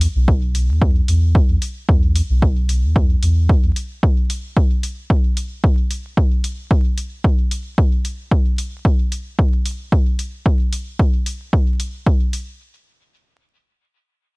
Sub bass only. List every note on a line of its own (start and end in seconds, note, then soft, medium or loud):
0.15 0.70 B1 loud
0.69 1.01 E2 medium
1.08 1.41 E2 medium
1.49 1.57 E2 medium
1.89 2.22 E2 medium
2.29 2.85 B1 loud
2.83 3.16 E2 medium
3.23 3.56 E2 medium
3.63 3.72 E2 medium